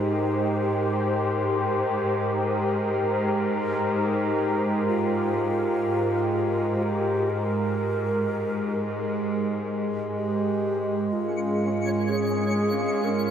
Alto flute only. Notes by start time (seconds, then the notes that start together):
Already playing: D#4
3.95 D#4
4.88 F4
6.83 G4
7.30 A#4
10.16 G4
11.13 F4
12.10 G#4
13.04 A#4